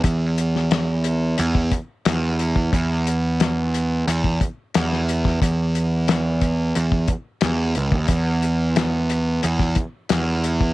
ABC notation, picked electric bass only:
X:1
M:4/4
L:1/16
Q:1/4=89
K:D#phr
V:1 name="Picked electric bass" clef=bass
E,,8 E,,2 z2 E,,4 | E,,8 E,,2 z2 E,,4 | E,,8 E,,2 z2 E,,2 C,, D,, | E,,8 E,,2 z2 E,,4 |]